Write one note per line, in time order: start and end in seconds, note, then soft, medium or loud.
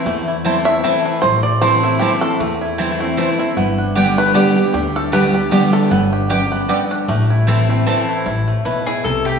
0.00 1.05 E3 medium
0.00 0.28 E4 medium
0.06 0.80 E2 medium
0.06 0.83 E2 medium
0.06 1.46 A3 medium
0.28 0.46 E4 medium
0.44 0.65 E3 medium
0.44 0.66 A3 medium
0.44 0.54 C4 medium
0.44 0.66 C4 medium
0.44 0.55 E4 medium
0.44 0.65 E4 medium
0.44 0.65 E4 loud
0.44 0.55 C5 loud
0.44 0.55 A5 loud
0.65 0.84 C4 soft
0.65 0.83 E4 medium
0.65 0.83 E5 loud
0.84 1.21 E3 medium
0.84 1.21 A3 loud
0.84 0.93 C4 medium
0.84 1.22 C4 loud
0.84 1.21 E4 medium
0.84 0.94 E4 loud
0.84 1.22 E4 loud
0.84 0.94 C5 loud
0.84 0.94 A5 loud
1.05 2.45 E3 medium
1.22 2.00 A1 loud
1.22 1.98 A2 medium
1.22 1.43 C5 loud
1.43 1.61 D5 loud
1.61 1.82 E3 medium
1.61 1.83 A3 medium
1.61 1.72 C4 loud
1.61 1.83 C4 medium
1.61 1.72 E4 medium
1.61 1.82 E4 loud
1.61 2.02 C5 loud
1.61 1.72 C5 loud
1.61 1.72 A5 medium
1.83 2.36 A3 medium
1.83 2.01 C4 medium
1.83 2.00 E4 medium
1.99 2.21 E3 medium
1.99 2.22 A3 medium
1.99 2.10 C4 medium
1.99 2.22 C4 medium
1.99 2.11 E4 medium
1.99 2.21 E4 loud
1.99 2.21 G4 medium
1.99 2.11 C5 loud
1.99 2.11 A5 loud
2.21 2.40 C4 medium
2.21 2.39 E4 medium
2.21 2.74 A4 loud
2.40 3.16 E2 medium
2.40 3.15 E2 medium
2.40 2.96 A3 medium
2.61 2.77 E4 medium
2.78 2.99 E3 medium
2.78 3.00 A3 medium
2.78 2.88 C4 medium
2.78 3.00 C4 loud
2.78 3.38 E4 medium
2.78 2.89 E4 medium
2.78 2.98 E4 loud
2.78 2.89 C5 medium
2.78 2.89 A5 medium
3.00 3.53 A3 medium
3.00 3.18 C4 medium
3.00 3.17 E4 medium
3.17 3.38 E3 loud
3.17 3.39 A3 medium
3.17 3.27 C4 medium
3.17 3.39 C4 medium
3.17 3.28 E4 medium
3.17 3.38 E4 loud
3.17 3.57 A4 medium
3.17 3.28 C5 medium
3.17 3.28 A5 medium
3.39 3.57 C4 medium
3.39 3.56 E4 medium
3.39 3.57 E4 medium
3.57 4.33 G1 medium
3.57 4.32 G2 medium
3.57 4.99 B3 medium
3.78 5.18 D4 medium
3.95 4.33 D3 medium
3.95 4.33 G3 medium
3.95 4.05 B3 medium
3.95 4.34 B3 loud
3.95 4.06 G4 loud
3.95 4.18 G4 medium
3.95 4.34 G4 medium
3.95 4.06 D5 medium
3.95 4.06 G5 medium
4.18 4.34 B4 loud
4.34 4.55 D3 loud
4.34 4.55 G3 loud
4.34 4.44 B3 medium
4.34 4.56 B3 medium
4.34 4.45 G4 loud
4.34 4.73 G4 medium
4.34 4.54 G4 loud
4.34 4.45 D5 loud
4.34 4.45 G5 medium
4.55 5.76 G3 medium
4.55 4.74 B3 medium
4.55 4.73 G4 medium
4.74 5.51 D2 medium
4.74 5.11 D3 medium
4.74 4.96 G4 loud
4.96 5.14 A4 loud
5.12 5.33 D3 medium
5.12 5.34 G3 medium
5.12 5.22 B3 medium
5.12 5.34 B3 loud
5.12 5.23 G4 medium
5.12 5.32 G4 medium
5.12 5.34 B4 loud
5.12 5.23 D5 loud
5.12 5.23 G5 medium
5.33 5.51 B3 medium
5.33 5.51 G4 medium
5.51 5.89 D3 medium
5.51 5.89 G3 loud
5.51 5.62 B3 loud
5.51 5.90 B3 medium
5.51 5.62 G4 medium
5.51 5.73 G4 medium
5.51 5.90 G4 loud
5.51 5.62 D5 medium
5.51 5.62 G5 loud
5.73 6.12 A4 loud
5.91 6.68 G1 loud
5.91 6.29 G2 medium
5.91 6.48 B3 medium
6.13 6.29 G4 medium
6.29 6.67 F#2 medium
6.29 6.40 B3 medium
6.29 6.40 G4 medium
6.29 7.26 G4 medium
6.29 6.40 D5 medium
6.29 6.40 G5 medium
6.52 7.05 B3 medium
6.69 7.06 G2 loud
6.69 6.79 B3 medium
6.69 6.79 G4 loud
6.69 7.08 A4 medium
6.69 6.79 D5 loud
6.69 6.79 G5 loud
6.91 7.09 D4 medium
7.08 7.85 A1 loud
7.08 7.83 A2 medium
7.08 7.65 A3 medium
7.30 7.83 E4 medium
7.47 7.68 E3 medium
7.47 7.68 A3 medium
7.47 7.57 C4 medium
7.47 7.69 C4 loud
7.47 7.57 E4 medium
7.47 7.68 E4 medium
7.47 7.86 A4 medium
7.47 7.57 C5 loud
7.47 7.58 A5 loud
7.69 8.23 A3 medium
7.69 7.87 C4 medium
7.69 7.86 E4 medium
7.86 8.24 E3 medium
7.86 8.24 A3 medium
7.86 7.96 C4 medium
7.86 8.25 C4 loud
7.86 7.96 E4 loud
7.86 8.25 E4 loud
7.86 8.26 A4 medium
7.86 7.96 C5 loud
7.86 7.97 A5 loud
8.09 8.25 E4 medium
8.26 8.51 A1 medium
8.26 9.01 A2 medium
8.26 8.64 E4 medium
8.48 9.26 A3 medium
8.65 8.98 B1 medium
8.65 9.03 B2 medium
8.65 8.86 E4 medium
8.65 8.86 B4 medium
8.86 9.39 E4 medium
8.86 9.04 G#4 medium
9.04 9.38 C2 medium
9.04 9.39 C3 medium
9.04 9.25 A4 medium
9.04 9.39 A4 medium
9.25 9.39 A3 medium
9.25 9.39 G4 medium